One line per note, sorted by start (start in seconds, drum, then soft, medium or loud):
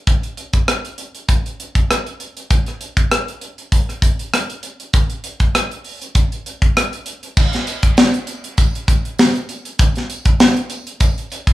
0.07 kick medium
0.07 closed hi-hat medium
0.23 closed hi-hat soft
0.37 closed hi-hat medium
0.53 kick medium
0.53 closed hi-hat soft
0.68 cross-stick loud
0.68 closed hi-hat medium
0.85 closed hi-hat soft
0.98 closed hi-hat medium
1.15 closed hi-hat soft
1.28 kick medium
1.28 closed hi-hat medium
1.46 closed hi-hat soft
1.60 closed hi-hat medium
1.75 kick medium
1.75 closed hi-hat soft
1.91 cross-stick medium
1.91 closed hi-hat medium
2.06 closed hi-hat soft
2.20 closed hi-hat medium
2.37 closed hi-hat soft
2.50 kick medium
2.50 closed hi-hat medium
2.66 cross-stick soft
2.66 closed hi-hat soft
2.81 closed hi-hat medium
2.97 kick medium
2.97 closed hi-hat medium
3.11 cross-stick loud
3.11 closed hi-hat medium
3.28 closed hi-hat soft
3.41 closed hi-hat medium
3.58 closed hi-hat soft
3.72 kick medium
3.72 closed hi-hat medium
3.89 cross-stick soft
3.89 closed hi-hat soft
4.02 kick medium
4.02 closed hi-hat medium
4.19 closed hi-hat soft
4.34 cross-stick loud
4.34 closed hi-hat loud
4.50 closed hi-hat soft
4.63 closed hi-hat medium
4.80 closed hi-hat soft
4.93 kick loud
4.93 closed hi-hat medium
5.10 closed hi-hat soft
5.24 closed hi-hat medium
5.40 kick medium
5.40 closed hi-hat soft
5.55 cross-stick loud
5.55 closed hi-hat medium
5.71 closed hi-hat soft
5.84 open hi-hat soft
6.02 closed hi-hat medium
6.15 kick medium
6.15 closed hi-hat medium
6.32 closed hi-hat soft
6.46 closed hi-hat medium
6.62 kick medium
6.62 closed hi-hat soft
6.77 cross-stick loud
6.77 closed hi-hat loud
6.93 closed hi-hat soft
7.06 closed hi-hat medium
7.23 closed hi-hat soft
7.37 kick loud
7.37 crash medium
7.37 tambourine soft
7.53 snare soft
7.53 closed hi-hat soft
7.67 closed hi-hat medium
7.67 tambourine soft
7.83 kick medium
7.83 closed hi-hat medium
7.97 snare loud
7.97 tambourine medium
8.14 closed hi-hat soft
8.27 closed hi-hat medium
8.27 tambourine soft
8.44 closed hi-hat medium
8.57 kick medium
8.57 closed hi-hat medium
8.57 tambourine medium
8.75 closed hi-hat soft
8.87 kick medium
8.87 closed hi-hat medium
8.87 tambourine soft
9.05 closed hi-hat soft
9.19 snare loud
9.19 tambourine loud
9.36 closed hi-hat soft
9.49 closed hi-hat medium
9.49 tambourine soft
9.65 closed hi-hat soft
9.78 kick loud
9.78 closed hi-hat medium
9.78 tambourine soft
9.96 snare soft
9.96 closed hi-hat soft
10.10 closed hi-hat medium
10.10 tambourine soft
10.25 kick medium
10.25 closed hi-hat soft
10.40 snare loud
10.40 tambourine medium
10.57 closed hi-hat soft
10.70 closed hi-hat medium
10.70 tambourine soft
10.87 closed hi-hat medium
11.00 kick medium
11.00 closed hi-hat medium
11.00 tambourine medium
11.18 closed hi-hat soft
11.30 closed hi-hat medium
11.30 tambourine soft
11.47 kick medium
11.47 closed hi-hat soft